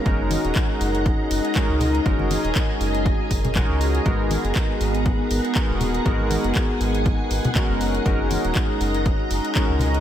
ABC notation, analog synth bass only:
X:1
M:4/4
L:1/16
Q:"Swing 16ths" 1/4=120
K:F#mix
V:1 name="Analog synth bass" clef=bass
F,,,2 z D,,, z2 F,,,2 z2 F,,, z2 C,,2 z | F,,,2 z D,,, z2 F,,,2 z2 F,,,2 z C,,2 z | G,,,2 z F,,, z2 G,,,2 z2 G,,, z2 D,,,2 z | G,,,2 z F,,, z2 G,,,2 z2 G,,, z2 F,,,2 z |
F,,,2 z D,,, z2 F,,,2 z2 F,,, z2 C,,2 z |]